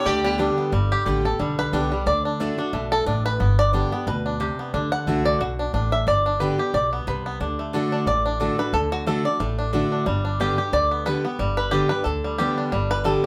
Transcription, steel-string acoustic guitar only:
0.05 D3
0.38 D3 G3 B3 G4
0.72 G2
1.06 D3 G3 B3 G4
1.25 B3 G4
1.39 D3
1.73 D3 G3 B3 G4
1.92 B3 G4
2.06 D3
2.40 D3 A3 D4 F#4
2.58 D4 F#4
2.73 B2
3.06 A2
3.40 G2
3.73 D3 G3 B3 G4
3.92 B3 G4
4.07 B2
4.40 C3
4.74 D3
5.07 D3 A3 D4 F#4
5.40 B2
5.74 A2
6.07 G2
6.40 D3 G3 B3 G4
6.58 B3 G4
6.74 B2
7.07 C3
7.41 D3
7.73 D3 A3 D4 F#4
8.07 A2
8.40 D3 A3 D4 F#4
8.58 D4 F#4
8.74 D3
9.06 D3 A3 D4 F#4
9.25 D4 F#4
9.40 A2
9.73 D3 A3 D4 F#4
10.06 G2
10.40 D3 G3 B3 G4
10.58 B3 G4
10.73 D3
11.06 D3 G3 B3 G4
11.24 B3 G4
11.39 G2
11.72 D3 G3 B3 G4
11.91 B3 G4
12.05 D3
12.39 D3 G3 B3 G4
12.72 G2
13.04 D3 G3 B3 G4

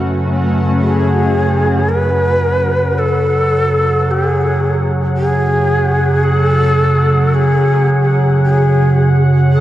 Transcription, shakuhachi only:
0.82 G#4
1.89 B4
2.98 A4
4.11 G4
4.27 G#4
5.17 G#4
6.24 A4
7.34 G#4
8.44 G#4
9.52 A4

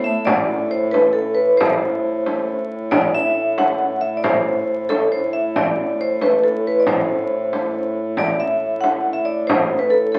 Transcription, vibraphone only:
0.04 A3 E5
0.25 D5
0.71 C5
0.91 B4
1.13 A4
1.35 B4
1.57 C5
2.91 D5
3.15 E5
3.58 F#5
4.01 E5
4.17 D5
4.24 C5
4.89 A4
5.12 C5
5.33 E5
5.56 D5
6.01 C5
6.22 B4
6.44 A4
6.67 B4
6.80 D5
6.88 C5
8.18 D5
8.40 E5
8.81 F#5
9.13 E5
9.25 D5
9.47 C5
9.79 B4
9.90 A4
10.12 A4

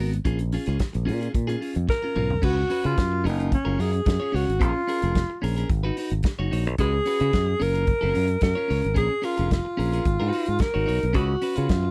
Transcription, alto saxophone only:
1.90 A#4
2.44 F#4
2.86 F4
3.27 D#4
3.54 C#4
3.81 G#4
4.35 F#4
4.63 F4
6.80 G#4
7.62 A#4
8.43 A#4
8.97 G#4
9.25 F4
9.53 F4
10.61 A#4
11.15 F#4
11.57 F4

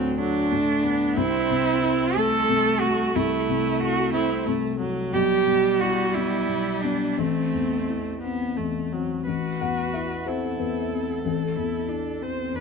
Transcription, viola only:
Already playing: F#3
0.18 F#3
0.51 A3
0.83 B3
1.16 C4
2.17 A3
3.16 A3
4.14 C4
4.47 A3
4.79 F#3
5.13 G3
7.18 A3
8.22 B3
8.57 A3
8.92 F#3
9.28 B4
10.27 A4
12.23 C5
12.55 B4

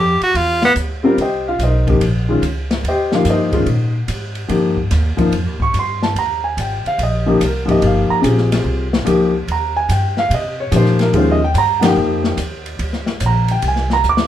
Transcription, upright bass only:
Already playing: F2
0.21 muted upright bass stroke
0.34 E2
0.75 D2
1.17 C2
1.59 B1
2.00 A#1
2.42 C#2
2.84 D#2
3.25 G2
3.66 A#2
4.08 G#2
4.49 G2
4.91 D#2
5.18 muted upright bass stroke
5.31 F2
5.46 D#2
5.59 C2
5.74 G2
6.15 D#2
6.57 G#1
6.85 muted upright bass stroke
6.98 A#1
7.41 C2
7.82 G1
8.10 muted upright bass stroke
8.23 A#1
8.64 C2
9.06 C#2
9.48 D#2
9.89 G2
10.30 C3
10.72 A#2
11.13 D#2
11.54 G2
11.96 F2
12.37 D#2
12.79 D2
13.20 A#1
13.63 C2
14.04 D2

